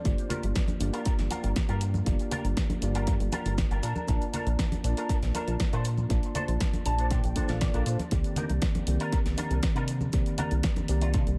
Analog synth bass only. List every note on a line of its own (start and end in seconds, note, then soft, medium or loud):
0.05 0.16 G1 loud
0.43 0.53 G1 medium
0.80 0.91 G1 loud
1.06 1.16 G1 soft
1.19 1.29 G1 medium
1.44 1.54 G1 loud
1.69 2.03 G2 medium
2.07 2.17 G1 loud
2.44 2.54 G1 medium
2.82 3.09 G1 loud
3.08 3.18 G2 loud
3.20 3.30 G1 loud
3.46 3.66 G1 medium
3.71 3.81 G1 medium
3.83 3.93 A#2 medium
4.09 4.19 A#1 loud
4.47 4.56 A#1 medium
4.84 4.94 A#1 loud
5.09 5.20 A#1 soft
5.23 5.32 A#1 medium
5.47 5.57 A#1 medium
5.73 6.06 A#2 medium
6.10 6.21 A#1 loud
6.48 6.58 A#1 medium
6.86 7.13 A#1 loud
7.11 7.21 A#2 loud
7.24 7.34 A#1 loud
7.49 7.69 A#1 medium
7.74 7.84 A#1 medium
7.86 7.97 A#2 medium
8.12 8.22 C2 loud
8.50 8.60 C2 medium
8.87 8.98 C2 loud
9.13 9.23 C2 soft
9.25 9.35 C2 medium
9.51 9.60 C2 medium
9.75 10.09 C3 medium
10.14 10.24 C2 loud
10.52 10.61 C2 medium
10.89 11.16 C2 loud
11.14 11.25 C3 loud
11.27 11.37 C2 loud